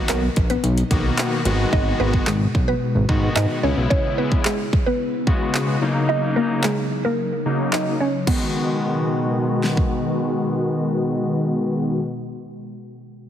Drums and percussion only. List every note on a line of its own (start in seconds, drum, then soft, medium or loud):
0.09 clap loud
0.09 closed hi-hat loud
0.36 kick loud
0.36 closed hi-hat medium
0.50 closed hi-hat soft
0.64 closed hi-hat medium
0.78 closed hi-hat medium
0.91 kick medium
0.91 closed hi-hat medium
1.18 clap loud
1.18 closed hi-hat medium
1.45 closed hi-hat medium
1.73 kick loud
2.13 kick medium
2.27 clap loud
2.55 kick loud
3.09 kick medium
3.36 clap loud
3.91 kick loud
4.32 kick medium
4.45 clap loud
4.73 kick loud
5.27 kick medium
5.55 clap loud
6.63 clap loud
7.73 clap loud
8.27 kick loud
8.27 crash medium
9.64 snare medium
9.77 kick medium